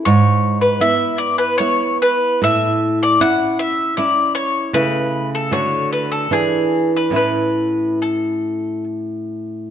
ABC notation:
X:1
M:3/4
L:1/16
Q:1/4=76
K:A
V:1 name="Mandolin"
c3 B e2 d B c2 B2 | e3 d f2 e2 d2 c2 | B3 A c2 B A G3 B | B4 A4 z4 |]
V:2 name="Nylon-string guitar"
G,,4 [B,E]4 [B,E]4 | A,,4 [CE]4 [CE]4 | [C,A,E]4 [D,A,F]4 [E,DE]4 | [A,,CE]12 |]